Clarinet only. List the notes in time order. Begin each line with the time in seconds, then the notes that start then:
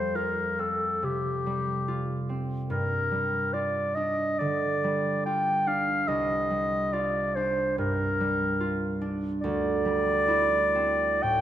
Already playing: C5
0.16 A#4
0.61 A4
1.04 G4
2.71 A#4
3.54 D5
3.95 D#5
4.39 D5
5.26 G5
5.68 F5
6.08 D#5
6.93 D5
7.35 C5
7.79 A#4
9.41 D5
11.23 G5